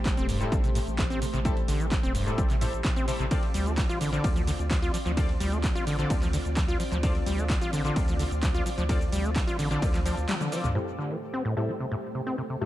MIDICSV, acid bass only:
0, 0, Header, 1, 2, 480
1, 0, Start_track
1, 0, Key_signature, 0, "minor"
1, 0, Tempo, 465116
1, 1496, Time_signature, 4, 2, 24, 8
1, 13060, End_track
2, 0, Start_track
2, 0, Title_t, "Acid bass"
2, 0, Program_c, 0, 38
2, 178, Note_on_c, 0, 60, 102
2, 276, Note_off_c, 0, 60, 0
2, 297, Note_on_c, 0, 43, 76
2, 418, Note_on_c, 0, 45, 97
2, 434, Note_off_c, 0, 43, 0
2, 537, Note_on_c, 0, 57, 107
2, 552, Note_off_c, 0, 45, 0
2, 577, Note_off_c, 0, 57, 0
2, 659, Note_on_c, 0, 48, 77
2, 724, Note_off_c, 0, 48, 0
2, 776, Note_on_c, 0, 45, 104
2, 817, Note_off_c, 0, 45, 0
2, 1017, Note_on_c, 0, 48, 84
2, 1084, Note_off_c, 0, 48, 0
2, 1139, Note_on_c, 0, 60, 103
2, 1236, Note_off_c, 0, 60, 0
2, 1257, Note_on_c, 0, 48, 77
2, 1297, Note_off_c, 0, 48, 0
2, 1379, Note_on_c, 0, 48, 76
2, 1444, Note_off_c, 0, 48, 0
2, 1497, Note_on_c, 0, 45, 102
2, 1537, Note_off_c, 0, 45, 0
2, 1737, Note_on_c, 0, 50, 78
2, 1859, Note_on_c, 0, 52, 79
2, 1874, Note_off_c, 0, 50, 0
2, 1924, Note_off_c, 0, 52, 0
2, 2099, Note_on_c, 0, 60, 100
2, 2196, Note_off_c, 0, 60, 0
2, 2217, Note_on_c, 0, 43, 79
2, 2339, Note_on_c, 0, 45, 100
2, 2354, Note_off_c, 0, 43, 0
2, 2457, Note_on_c, 0, 57, 106
2, 2472, Note_off_c, 0, 45, 0
2, 2497, Note_off_c, 0, 57, 0
2, 2579, Note_on_c, 0, 48, 78
2, 2644, Note_off_c, 0, 48, 0
2, 2697, Note_on_c, 0, 45, 107
2, 2737, Note_off_c, 0, 45, 0
2, 2936, Note_on_c, 0, 48, 85
2, 3004, Note_off_c, 0, 48, 0
2, 3059, Note_on_c, 0, 60, 102
2, 3156, Note_off_c, 0, 60, 0
2, 3177, Note_on_c, 0, 48, 76
2, 3217, Note_off_c, 0, 48, 0
2, 3299, Note_on_c, 0, 48, 78
2, 3364, Note_off_c, 0, 48, 0
2, 3417, Note_on_c, 0, 50, 107
2, 3457, Note_off_c, 0, 50, 0
2, 3658, Note_on_c, 0, 55, 78
2, 3780, Note_on_c, 0, 57, 81
2, 3795, Note_off_c, 0, 55, 0
2, 3844, Note_off_c, 0, 57, 0
2, 4019, Note_on_c, 0, 65, 104
2, 4116, Note_off_c, 0, 65, 0
2, 4138, Note_on_c, 0, 50, 106
2, 4238, Note_off_c, 0, 50, 0
2, 4259, Note_on_c, 0, 50, 100
2, 4377, Note_on_c, 0, 62, 106
2, 4393, Note_off_c, 0, 50, 0
2, 4417, Note_off_c, 0, 62, 0
2, 4498, Note_on_c, 0, 53, 79
2, 4563, Note_off_c, 0, 53, 0
2, 4616, Note_on_c, 0, 50, 105
2, 4657, Note_off_c, 0, 50, 0
2, 4856, Note_on_c, 0, 53, 84
2, 4923, Note_off_c, 0, 53, 0
2, 4977, Note_on_c, 0, 65, 108
2, 5075, Note_off_c, 0, 65, 0
2, 5096, Note_on_c, 0, 53, 78
2, 5136, Note_off_c, 0, 53, 0
2, 5217, Note_on_c, 0, 53, 76
2, 5283, Note_off_c, 0, 53, 0
2, 5336, Note_on_c, 0, 50, 106
2, 5376, Note_off_c, 0, 50, 0
2, 5576, Note_on_c, 0, 55, 79
2, 5698, Note_on_c, 0, 57, 76
2, 5713, Note_off_c, 0, 55, 0
2, 5763, Note_off_c, 0, 57, 0
2, 5938, Note_on_c, 0, 65, 99
2, 6036, Note_off_c, 0, 65, 0
2, 6057, Note_on_c, 0, 50, 103
2, 6157, Note_off_c, 0, 50, 0
2, 6179, Note_on_c, 0, 50, 94
2, 6297, Note_on_c, 0, 62, 106
2, 6313, Note_off_c, 0, 50, 0
2, 6337, Note_off_c, 0, 62, 0
2, 6418, Note_on_c, 0, 53, 81
2, 6483, Note_off_c, 0, 53, 0
2, 6537, Note_on_c, 0, 50, 100
2, 6577, Note_off_c, 0, 50, 0
2, 6777, Note_on_c, 0, 53, 88
2, 6844, Note_off_c, 0, 53, 0
2, 6898, Note_on_c, 0, 65, 102
2, 6996, Note_off_c, 0, 65, 0
2, 7016, Note_on_c, 0, 53, 78
2, 7056, Note_off_c, 0, 53, 0
2, 7138, Note_on_c, 0, 53, 77
2, 7203, Note_off_c, 0, 53, 0
2, 7257, Note_on_c, 0, 50, 106
2, 7297, Note_off_c, 0, 50, 0
2, 7497, Note_on_c, 0, 55, 81
2, 7619, Note_on_c, 0, 57, 75
2, 7634, Note_off_c, 0, 55, 0
2, 7683, Note_off_c, 0, 57, 0
2, 7858, Note_on_c, 0, 65, 104
2, 7956, Note_off_c, 0, 65, 0
2, 7977, Note_on_c, 0, 50, 101
2, 8077, Note_off_c, 0, 50, 0
2, 8099, Note_on_c, 0, 50, 96
2, 8217, Note_on_c, 0, 62, 105
2, 8232, Note_off_c, 0, 50, 0
2, 8257, Note_off_c, 0, 62, 0
2, 8338, Note_on_c, 0, 53, 80
2, 8403, Note_off_c, 0, 53, 0
2, 8456, Note_on_c, 0, 50, 102
2, 8496, Note_off_c, 0, 50, 0
2, 8696, Note_on_c, 0, 53, 86
2, 8763, Note_off_c, 0, 53, 0
2, 8818, Note_on_c, 0, 65, 99
2, 8916, Note_off_c, 0, 65, 0
2, 8936, Note_on_c, 0, 53, 77
2, 8976, Note_off_c, 0, 53, 0
2, 9059, Note_on_c, 0, 53, 76
2, 9124, Note_off_c, 0, 53, 0
2, 9176, Note_on_c, 0, 50, 104
2, 9217, Note_off_c, 0, 50, 0
2, 9416, Note_on_c, 0, 55, 77
2, 9538, Note_on_c, 0, 57, 74
2, 9553, Note_off_c, 0, 55, 0
2, 9603, Note_off_c, 0, 57, 0
2, 9777, Note_on_c, 0, 65, 98
2, 9876, Note_off_c, 0, 65, 0
2, 9896, Note_on_c, 0, 50, 100
2, 9997, Note_off_c, 0, 50, 0
2, 10018, Note_on_c, 0, 50, 95
2, 10137, Note_on_c, 0, 62, 104
2, 10152, Note_off_c, 0, 50, 0
2, 10177, Note_off_c, 0, 62, 0
2, 10258, Note_on_c, 0, 53, 80
2, 10323, Note_off_c, 0, 53, 0
2, 10376, Note_on_c, 0, 53, 78
2, 10477, Note_off_c, 0, 53, 0
2, 10615, Note_on_c, 0, 55, 109
2, 10683, Note_off_c, 0, 55, 0
2, 10738, Note_on_c, 0, 50, 79
2, 10856, Note_on_c, 0, 53, 77
2, 10872, Note_off_c, 0, 50, 0
2, 10957, Note_off_c, 0, 53, 0
2, 11096, Note_on_c, 0, 45, 98
2, 11137, Note_off_c, 0, 45, 0
2, 11336, Note_on_c, 0, 50, 77
2, 11458, Note_on_c, 0, 52, 70
2, 11474, Note_off_c, 0, 50, 0
2, 11523, Note_off_c, 0, 52, 0
2, 11698, Note_on_c, 0, 60, 93
2, 11796, Note_off_c, 0, 60, 0
2, 11817, Note_on_c, 0, 45, 99
2, 11917, Note_off_c, 0, 45, 0
2, 11938, Note_on_c, 0, 45, 90
2, 12057, Note_on_c, 0, 57, 98
2, 12073, Note_off_c, 0, 45, 0
2, 12097, Note_off_c, 0, 57, 0
2, 12178, Note_on_c, 0, 48, 72
2, 12243, Note_off_c, 0, 48, 0
2, 12297, Note_on_c, 0, 45, 100
2, 12337, Note_off_c, 0, 45, 0
2, 12537, Note_on_c, 0, 48, 81
2, 12604, Note_off_c, 0, 48, 0
2, 12658, Note_on_c, 0, 60, 95
2, 12756, Note_off_c, 0, 60, 0
2, 12777, Note_on_c, 0, 48, 73
2, 12817, Note_off_c, 0, 48, 0
2, 12899, Note_on_c, 0, 48, 70
2, 12964, Note_off_c, 0, 48, 0
2, 13016, Note_on_c, 0, 45, 102
2, 13057, Note_off_c, 0, 45, 0
2, 13060, End_track
0, 0, End_of_file